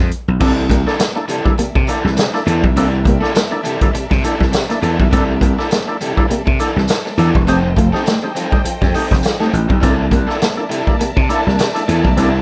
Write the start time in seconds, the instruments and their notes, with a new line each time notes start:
0.11 closed hi-hat
0.28 slap bass B1
0.40 slap bass C2, overdriven electric guitar E3 A#3 D4 A4, tonewheel organ A#3 D4 E4 A4, clean electric guitar C4, string section A4 A#4 D5 E5, kick, crash, tambourine
0.58 muted clean electric guitar stroke
0.70 slap bass C2, tonewheel organ C3 G3, clean electric guitar A#3, muted overdriven electric guitar stroke, kick, closed hi-hat, tambourine
0.87 overdriven electric guitar E3 A#3 D4 A4, tonewheel organ A#3 D4 E4 A4, snare
0.99 clean electric guitar A#3, muted overdriven electric guitar stroke, snare, closed hi-hat, tambourine
1.16 tonewheel organ A#3 D4 E4 A4, muted overdriven electric guitar stroke, muted clean electric guitar stroke
1.28 tonewheel organ C3 G3, overdriven electric guitar E3 A#3 D4 A4, closed hi-hat, tambourine
1.45 clean electric guitar G3, tonewheel organ A#3 D4 E4 A4, muted overdriven electric guitar stroke, kick
1.58 tonewheel organ C3 G3, clean electric guitar A#3, muted overdriven electric guitar stroke, muted slap bass stroke, closed hi-hat, tambourine
1.75 slap bass C3, muted overdriven electric guitar stroke, kick
1.87 overdriven electric guitar E3 A#3 D4 A4, tonewheel organ A#3 D4 E4 A4, muted clean electric guitar stroke, closed hi-hat, tambourine
2.04 slap bass C2, clean electric guitar G3, tonewheel organ E4 A4, muted overdriven electric guitar stroke, snare
2.17 tonewheel organ C3 G3, muted overdriven electric guitar stroke, muted clean electric guitar stroke, snare, closed hi-hat, tambourine
2.34 tonewheel organ A#3 D4 E4 A4, muted overdriven electric guitar stroke, snare
2.46 slap bass E2, overdriven electric guitar E3 A#3 D4 A4, clean electric guitar E3, tonewheel organ E4 A4, closed hi-hat, tambourine
2.63 slap bass B1, clean electric guitar G3, muted overdriven electric guitar stroke, kick
2.76 slap bass C2, overdriven electric guitar E3 A#3 D4 A#4, tonewheel organ A#3 D4 E4 A4, clean electric guitar C4, closed hi-hat, tambourine
3.05 slap bass C2, tonewheel organ C3 G3, clean electric guitar A#3, muted overdriven electric guitar stroke, kick, closed hi-hat
3.21 overdriven electric guitar E3 A#3 D4 A4, tonewheel organ A#3 D4 E4 A4, muted clean electric guitar stroke, snare
3.34 clean electric guitar A#3, muted overdriven electric guitar stroke, snare, closed hi-hat, tambourine
3.51 tonewheel organ A#3 D4 E4 A4, muted overdriven electric guitar stroke, muted clean electric guitar stroke
3.64 tonewheel organ C3 G3, overdriven electric guitar E3 A#3 D4 A4, closed hi-hat, tambourine
3.81 clean electric guitar G3, tonewheel organ A#3 D4 E4 A4, muted overdriven electric guitar stroke, kick, closed hi-hat
3.94 tonewheel organ C3 G3, muted overdriven electric guitar stroke, muted slap bass stroke, closed hi-hat, tambourine
4.10 slap bass C3, clean electric guitar G3, muted overdriven electric guitar stroke, kick, snare
4.22 overdriven electric guitar E3 A#3 D4 A4, tonewheel organ A#3 D4 E4 A4, muted clean electric guitar stroke, closed hi-hat, tambourine
4.39 slap bass C2, clean electric guitar G3, tonewheel organ E4 A4, muted overdriven electric guitar stroke, kick, snare
4.52 tonewheel organ C3 G3, muted overdriven electric guitar stroke, snare, closed hi-hat, tambourine
4.69 tonewheel organ A#3 D4 E4 A4, clean electric guitar A#3, muted overdriven electric guitar stroke, snare, closed hi-hat
4.82 slap bass E2, overdriven electric guitar E3 A#3 D4 A4, tonewheel organ E4 A4, muted clean electric guitar stroke, closed hi-hat, tambourine
4.98 slap bass B1, clean electric guitar G3, muted overdriven electric guitar stroke, kick
5.11 slap bass C2, overdriven electric guitar E3 A#3 D4 A4, tonewheel organ A#3 D4 E4 A4, clean electric guitar C4, kick, closed hi-hat, tambourine
5.30 muted clean electric guitar stroke
5.41 slap bass C2, tonewheel organ C3 G3, clean electric guitar A#3, muted overdriven electric guitar stroke, kick, closed hi-hat, tambourine
5.58 overdriven electric guitar E3 A#3 D4 A4, tonewheel organ A#3 D4 E4 A4, snare
5.70 clean electric guitar A#3, muted overdriven electric guitar stroke, snare, closed hi-hat, tambourine
5.88 tonewheel organ A#3 D4 E4 A4, muted overdriven electric guitar stroke, muted clean electric guitar stroke
6.01 tonewheel organ C3 G3, overdriven electric guitar E3 A#3 D4 A4, closed hi-hat, tambourine
6.16 clean electric guitar G3, tonewheel organ A#3 D4 E4 A4, muted overdriven electric guitar stroke, kick
6.29 tonewheel organ C3 G3, clean electric guitar A#3, muted overdriven electric guitar stroke, muted slap bass stroke, closed hi-hat, tambourine
6.46 slap bass C3, muted overdriven electric guitar stroke, kick
6.59 overdriven electric guitar E3 A#3 D4 A4, tonewheel organ A#3 D4 E4 A4, muted clean electric guitar stroke, closed hi-hat, tambourine
6.76 slap bass C2, clean electric guitar G3, tonewheel organ E4 A4, muted overdriven electric guitar stroke, snare
6.88 muted clean electric guitar stroke, muted overdriven electric guitar stroke, snare, closed hi-hat, tambourine
7.06 muted overdriven electric guitar stroke, snare
7.18 slap bass E2, overdriven electric guitar E3 A#3 D4 A4, clean electric guitar E3, tonewheel organ A#3 D4 E4 A4, closed hi-hat, tambourine
7.34 slap bass E1, clean electric guitar G3, muted overdriven electric guitar stroke, kick
7.47 slap bass F1, overdriven electric guitar G3 C4 D#4 C5, tonewheel organ A3 D#4 G4, clean electric guitar C4, string section C5 D#5 G5, closed hi-hat, tambourine
7.76 slap bass F1, tonewheel organ F3, clean electric guitar A3, muted overdriven electric guitar stroke, kick, closed hi-hat, tambourine
7.93 overdriven electric guitar G3 C4 D#4 A4, tonewheel organ A3 D#4 G4, muted clean electric guitar stroke, snare
8.06 clean electric guitar A3, muted overdriven electric guitar stroke, snare, closed hi-hat, tambourine
8.23 tonewheel organ A3 D#4 G4, muted overdriven electric guitar stroke, muted clean electric guitar stroke
8.35 tonewheel organ F3, overdriven electric guitar G3 C4 D#4 A4, closed hi-hat, tambourine
8.52 clean electric guitar G3, tonewheel organ A3 D#4 G4, muted overdriven electric guitar stroke, kick
8.65 tonewheel organ F3, muted slap bass stroke, muted overdriven electric guitar stroke, closed hi-hat
8.81 slap bass F2, clean electric guitar G3, muted overdriven electric guitar stroke, kick, snare
8.94 overdriven electric guitar G3 C4 D#4 A4, tonewheel organ A3 D#4 G4, muted clean electric guitar stroke, open hi-hat, tambourine
9.11 slap bass F1, clean electric guitar G3, tonewheel organ D#4 G4, muted overdriven electric guitar stroke, kick, snare
9.23 tonewheel organ F3, muted overdriven electric guitar stroke, snare, closed hi-hat, tambourine
9.40 overdriven electric guitar G3 C4 D#4 A4, clean electric guitar A3, tonewheel organ A3 D#4 G4, snare
9.52 slap bass A1, tonewheel organ D#4 G4, muted overdriven electric guitar stroke, muted clean electric guitar stroke, closed hi-hat, tambourine
9.69 slap bass B1, clean electric guitar G3, muted overdriven electric guitar stroke, kick
9.81 slap bass C2, overdriven electric guitar A#3 D4 E4 A4, tonewheel organ A#3 D4 E4 A4, clean electric guitar C4, string section A#4 D5 E5 A5, kick, closed hi-hat, tambourine
10.00 muted clean electric guitar stroke
10.11 slap bass C2, tonewheel organ C3 G3, clean electric guitar A#3, muted overdriven electric guitar stroke, kick, closed hi-hat, tambourine
10.27 tonewheel organ A#3 D4 E4 A4, overdriven electric guitar A#3 D4 E4 A4, snare
10.40 clean electric guitar A#3, muted overdriven electric guitar stroke, snare, closed hi-hat, tambourine
10.57 tonewheel organ A#3 D4 E4 A4, muted overdriven electric guitar stroke, muted clean electric guitar stroke
10.70 tonewheel organ C3 G3, overdriven electric guitar A#3 D4 E4 A4, closed hi-hat, tambourine
10.87 clean electric guitar G3, tonewheel organ A#3 D4 E4 A4, muted overdriven electric guitar stroke, kick
11.00 tonewheel organ C3 G3, clean electric guitar A#3, muted overdriven electric guitar stroke, muted slap bass stroke, closed hi-hat, tambourine
11.16 slap bass C3, muted overdriven electric guitar stroke, kick
11.29 tonewheel organ A#3 D4 E4 A4, overdriven electric guitar A#3 D4 E4 A4, muted clean electric guitar stroke, closed hi-hat, tambourine
11.46 slap bass C2, clean electric guitar G3, tonewheel organ E4 A4, muted overdriven electric guitar stroke, snare
11.59 tonewheel organ C3 G3, muted clean electric guitar stroke, muted overdriven electric guitar stroke, snare, closed hi-hat, tambourine
11.75 tonewheel organ A#3 D4 E4 A4, muted overdriven electric guitar stroke, snare, closed hi-hat
11.88 slap bass E2, clean electric guitar E3, overdriven electric guitar A#3 D4 E4 A4, tonewheel organ E4 A4, closed hi-hat, tambourine
12.04 slap bass B1, clean electric guitar G3, muted overdriven electric guitar stroke, kick
12.17 slap bass C2, tonewheel organ A#3 D4 E4 A4, overdriven electric guitar A#3 D4 E4 A#4, clean electric guitar C4, closed hi-hat, tambourine